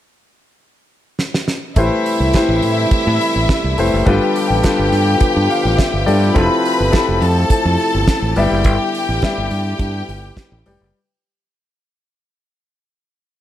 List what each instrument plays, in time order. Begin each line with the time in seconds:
1.19 snare
1.34 snare
1.48 snare
1.76 fingered electric bass A1, french horn section C3 E3 G3 A3 E4, grand piano A3 E4 G4 B4 C5, string section E4 E5, kick, closed hi-hat
2.06 open hi-hat
2.20 fingered electric bass C2
2.34 grand piano A3 E4 G4 B4 C5, kick, snare, closed hi-hat
2.49 fingered electric bass A1
2.62 fingered electric bass A2, open hi-hat
2.91 muted fingered electric bass stroke, kick, closed hi-hat
3.07 fingered electric bass A2
3.21 open hi-hat
3.36 fingered electric bass A1
3.49 kick, snare, closed hi-hat
3.64 fingered electric bass C2
3.78 fingered electric bass F1, grand piano A3 E4 G4 B4 C5, open hi-hat
3.94 fingered electric bass F#1
4.06 fingered electric bass G1, french horn section D3 F3 B3 F4, grand piano G3 D4 F4 A4 B4, string section G4 G5, kick, closed hi-hat
4.36 open hi-hat
4.50 fingered electric bass A1
4.63 grand piano G3 D4 F4 A4 B4, kick, snare, closed hi-hat
4.79 fingered electric bass G1
4.92 fingered electric bass G2, snare, open hi-hat
5.20 muted fingered electric bass stroke, kick, closed hi-hat
5.37 fingered electric bass G2
5.50 grand piano F5, open hi-hat
5.65 fingered electric bass A1
5.77 grand piano E5, kick, snare, closed hi-hat
5.94 fingered electric bass G1
6.06 fingered electric bass G2, grand piano G3 D4 F4 A4 D5, open hi-hat
6.34 fingered electric bass F1, french horn section C3 A3 E4, grand piano F3 C4 E4 G4 A4, string section B4 B5, kick, closed hi-hat
6.65 open hi-hat
6.80 fingered electric bass G1
6.91 grand piano F3 C4 E4 G4 A4, kick, snare, closed hi-hat
7.09 fingered electric bass F1
7.22 fingered electric bass F2, string section A4 A5, open hi-hat
7.50 muted fingered electric bass stroke, kick, closed hi-hat
7.65 fingered electric bass F2
7.79 open hi-hat
7.95 fingered electric bass G1
8.08 kick, snare, closed hi-hat
8.22 fingered electric bass A1
8.36 fingered electric bass G1, french horn section D3 G3 B3, grand piano G3 G4 B4 D5 E5, string section G4 G5, open hi-hat
8.51 fingered electric bass F#1
8.64 fingered electric bass G1, kick, closed hi-hat
8.94 open hi-hat
9.09 fingered electric bass A1
9.22 grand piano G3 G4 B4 D5 E5, kick, snare, closed hi-hat
9.38 fingered electric bass G1
9.51 fingered electric bass G2, open hi-hat
9.79 fingered electric bass G2, kick, closed hi-hat
10.09 fingered electric bass G1, open hi-hat
10.37 kick, snare, closed hi-hat
10.52 fingered electric bass A1
10.66 fingered electric bass F1, grand piano G3 G4 B4 D5 G5, open hi-hat
10.81 fingered electric bass F#1